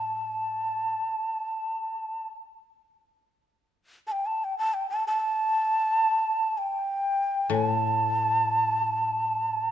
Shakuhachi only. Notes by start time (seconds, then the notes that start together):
Already playing: A5
4.07 A5
4.12 G5
4.26 A5
4.44 G5
4.58 A5
4.74 G5
4.90 A5
5.07 A5
6.58 G5
7.55 G#5
7.66 A5